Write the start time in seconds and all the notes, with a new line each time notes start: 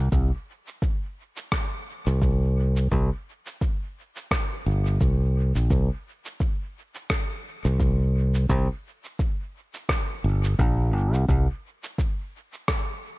Already playing: C2
0.12 C2, kick, shaker
0.67 shaker
0.82 kick, shaker
1.37 shaker
1.52 kick, cross-stick, shaker
2.07 C2, shaker
2.22 kick, shaker
2.76 shaker
2.91 C2, kick, shaker
3.46 shaker
3.61 kick, shaker
4.16 shaker
4.31 kick, cross-stick, shaker
4.66 G1
4.86 shaker
5.01 C2, kick, shaker
5.55 A#1, shaker
5.70 C2, kick, shaker
6.25 shaker
6.40 kick, shaker
6.95 shaker
7.10 kick, cross-stick, shaker
7.65 C2, shaker
7.80 kick, shaker
8.34 shaker
8.49 C2, kick, shaker
9.04 shaker
9.19 kick, shaker
9.74 shaker
9.89 kick, cross-stick, shaker
10.24 G1
10.44 shaker
10.59 A#1, kick, shaker
10.94 G1
11.13 C2, shaker
11.29 C2, kick, shaker
11.83 shaker
11.98 kick, shaker
12.53 shaker
12.68 kick, cross-stick, shaker